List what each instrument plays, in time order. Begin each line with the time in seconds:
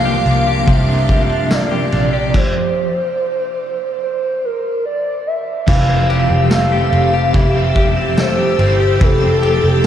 Already playing: picked electric bass C2, overdriven electric guitar C3 F3 A#3 D4 A#4, clean electric guitar F3 A#3 D4, string machine A#4 C6 D6, soft synth lead F5
0.05 clean electric guitar G4
0.26 picked electric bass C2, clean electric guitar D4, ride
0.47 clean electric guitar G4
0.65 picked electric bass C2, overdriven electric guitar C3 F3 A#3, clean electric guitar F3, kick, ride
0.70 overdriven electric guitar D4 A#4, soft synth lead E5
0.89 clean electric guitar D4
1.09 clean electric guitar G4, kick, ride
1.30 clean electric guitar D4
1.51 clean electric guitar A#3, soft synth lead D5, snare, ride, tambourine
1.71 clean electric guitar G4
1.92 picked electric bass A#1, clean electric guitar D4, ride
2.13 clean electric guitar G4
2.34 soft synth lead C5, kick, crash
4.03 soft synth lead C5
4.45 soft synth lead A#4
4.85 soft synth lead D5
5.27 soft synth lead E5
5.67 picked electric bass F1, clean electric guitar E3, overdriven electric guitar F3 A3 C4 G4, string machine G4 G5 A5 E6, soft synth lead F5, kick, crash
5.88 clean electric guitar C4
6.10 clean electric guitar G4, ride
6.30 picked electric bass F1, clean electric guitar C4
6.49 overdriven electric guitar A3 C4, clean electric guitar A3, soft synth lead F5, snare, ride, tambourine
6.53 overdriven electric guitar G4
6.72 clean electric guitar G4
6.93 picked electric bass F1, clean electric guitar C4, ride
7.14 clean electric guitar G4
7.33 picked electric bass F1, clean electric guitar E3, overdriven electric guitar F3 A3 C4 E4 G4, soft synth lead E5, kick, ride
7.55 clean electric guitar C4
7.76 clean electric guitar G4, kick, ride
7.97 clean electric guitar C4
8.18 clean electric guitar A3, soft synth lead C5, snare, ride, tambourine
8.39 clean electric guitar G4
8.58 picked electric bass G1, clean electric guitar C4, overdriven electric guitar E4 G4, ride
8.62 overdriven electric guitar C4
8.80 clean electric guitar G4
8.99 picked electric bass F1, clean electric guitar E3, overdriven electric guitar F3 A3 C4 E4 G4, kick, ride
9.03 soft synth lead A4
9.22 clean electric guitar C4
9.42 clean electric guitar G4, ride
9.63 picked electric bass F1, clean electric guitar C4